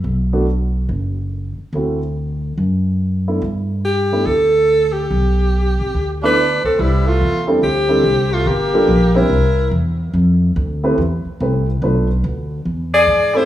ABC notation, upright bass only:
X:1
M:4/4
L:1/8
Q:"Swing" 1/4=143
K:G
V:1 name="Upright bass" clef=bass
B,,,4 F,,,3 z | D,,4 F,,4 | G,,4 D,,4 | B,,,3 _A,,, D,,3 D,, |
[K:C] C,,2 E,,2 D,,2 C,,2 | G,,,2 _B,,,2 C,,2 E,,2 | F,,2 D,,2 E,, z C,,2 | B,,,2 D,,2 E,,2 ^G,,2 |]